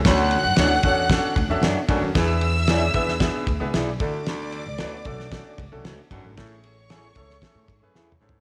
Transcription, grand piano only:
X:1
M:4/4
L:1/16
Q:1/4=114
K:Dlyd
V:1 name="Grand piano"
[CDFAc]3 z [CDFAc] z [CDFAc] z [CDFAc]2 z [CDFAe]2 z [CDFAc] z | [B,DEGB]3 z [B,DEGc] z [B,DEGB] z [B,DEGB]2 z [B,DEGB]2 z [A,DFA]2- | [A,DFA]3 z [A,CDFB] z [A,CDFA] z [A,CDFA]2 z [A,CDFA]2 z [A,CDFA] z | [A,CEGA]3 z [A,CEGA] z [A,CEGA] z [A,CEGA]2 z [A,CEGB]2 z [A,CEGA] z |]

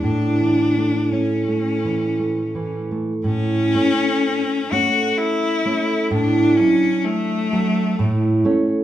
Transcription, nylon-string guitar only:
X:1
M:3/4
L:1/8
Q:1/4=64
K:A
V:1 name="Nylon-string guitar"
(3A,, E, A, (3C A, E, (3A, E, A, | A,, [A,C]2 [A,C]2 [A,C] | A,, [F,D]2 [F,D] A,, [A,C] |]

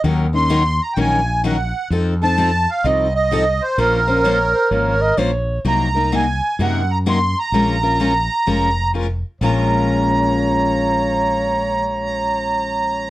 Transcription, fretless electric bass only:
X:1
M:4/4
L:1/8
Q:"Swing" 1/4=128
K:Bbm
V:1 name="Fretless electric bass" clef=bass
E,,4 B,,,4 | F,,4 C,,4 | B,,,4 A,,,2 B,,,2 | C,,4 G,,4 |
B,,,4 F,,,4 | B,,,8- | B,,,8 |]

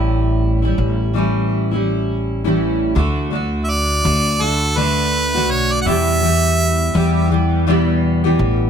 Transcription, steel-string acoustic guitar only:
X:1
M:4/4
L:1/16
Q:"Swing 16ths" 1/4=83
K:D
V:1 name="Steel-string acoustic guitar"
[A,,E,G,CE]3 [G,CE]3 [E,G,CE]3 [G,CE]4 [A,,E,G,CE]3 | [D,A,DF]2 [D,A,DF]4 [D,A,DF]2 [D,A,DF]2 [D,A,DF]3 [D,A,DF]3 | [E,,B,,E,G,B,G]2 [E,G,B,G]4 [E,G,B,G]2 [E,G,B,G]2 [E,,B,,E,G,B,G]3 [E,,B,,E,G,B,G]3 |]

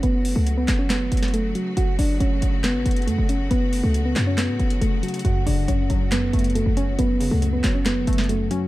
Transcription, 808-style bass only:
X:1
M:4/4
L:1/16
Q:1/4=138
K:F#m
V:1 name="808-style bass" clef=bass
F,,,3 C,,3 F,,,4 F,,,4 z2 | F,,,2 F,,,2 F,,,2 F,,,3 G,,, F,,,2 F,, F,,,3 | F,,,3 C,,3 F,,3 A,, F,,,2 ^E,,,2 z2 | F,,,2 ^E,,,2 F,,,2 F,,,4 F,,,3 F,,,3 |
F,,,3 C,,3 F,,,4 F,,,4 z2 |]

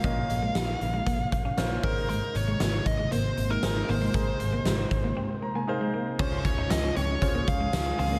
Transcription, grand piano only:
X:1
M:4/4
L:1/16
Q:1/4=117
K:Db
V:1 name="Grand piano"
[DFBe]6- [DFBe] z4 z [DFBc]2 [EABc]2- | [EABc]4- [EABc] z6 z [EABc]4 | [EABc]6- [EABc] z3 b a [EABcf]4 | [DFAd]6- [DFAd] z [DFAcd]6- [DFAcd] z |]
V:2 name="Grand piano" clef=bass
B,,6 z8 A,,2- | A,,4 z8 z2 A,,2- | A,,4 z12 | D,6 z8 z2 |]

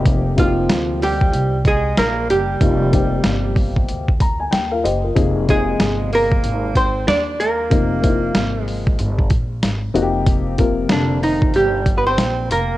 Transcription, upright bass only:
X:1
M:4/4
L:1/8
Q:"Swing 16ths" 1/4=94
K:Eb
V:1 name="Upright bass" clef=bass
F,,,2 D,,2 C,,2 B,,, _G,,, | F,,,2 G,,,2 D,,2 E,, _G,,, | F,,,2 G,,,2 A,,,2 E,,2 | F,,,2 A,,,2 G,,, B,,, A,,, F,,,- |
F,,,2 F,,,2 G,,,2 B,,, F,,, |]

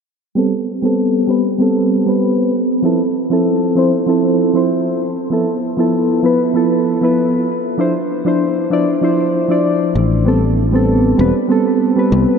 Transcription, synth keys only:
X:1
M:4/4
L:1/16
Q:1/4=97
K:Am
V:1 name="Synth keys"
z2 [G,B,CA] z2 [G,B,CA]3 [G,B,CB] z [G,B,CA]3 [G,B,CB]3 | z2 [F,CEA] z2 [F,CEA]3 [F,CEc] z [F,CEA]3 [F,CEc]3 | z2 [F,B,EA] z2 [F,B,EA]3 [F,B,EB] z [F,B,EA]3 [F,B,EB]3 | z2 [F,DEc] z2 [F,DEc]3 [F,DEd] z [F,DEc]3 [F,DEd]3 |
z2 [G,B,CA] z2 [G,B,CA]3 [G,B,CB] z [G,B,CA]3 [G,B,CB]3 |]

